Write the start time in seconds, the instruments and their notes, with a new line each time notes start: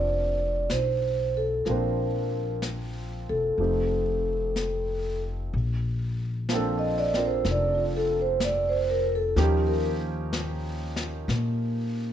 Already playing: upright bass F1, grand piano F3 A#3 C4 D4 F4 A4 C5, vibraphone D5
0.70 upright bass B1, vibraphone C5, brush sweep, snare, hi-hat pedal
1.37 vibraphone A4
1.65 upright bass A#1, grand piano F3 A#3 C4, vibraphone A#4, brush sweep, snare
1.69 grand piano D4 C5
2.62 brush sweep, snare, hi-hat pedal
3.29 upright bass E1, vibraphone A4
3.58 upright bass F1, grand piano F3 A3 C4 D#4 G4, brush sweep
4.56 brush sweep, snare, hi-hat pedal
5.52 upright bass A#1, brush sweep
6.49 grand piano F3 A#3 C4, brush sweep, snare, hi-hat pedal
6.53 grand piano D4 A4
6.79 vibraphone D#5
6.98 vibraphone D5
7.14 grand piano C4 D4 F4 A#4, snare
7.25 vibraphone C5
7.45 upright bass F1, brush sweep, snare
7.51 vibraphone D5
7.75 vibraphone F4
7.97 vibraphone A4
8.21 vibraphone C5
8.40 vibraphone D5, brush sweep, snare, hi-hat pedal
8.69 vibraphone C5
8.90 vibraphone A#4
9.15 vibraphone A4
9.36 upright bass D#2, grand piano F3 A#3 C#4 D#4 G4, vibraphone G4, brush sweep, snare
9.67 vibraphone A#4
10.33 brush sweep, snare, hi-hat pedal
10.96 snare
11.28 upright bass A#2, brush sweep, snare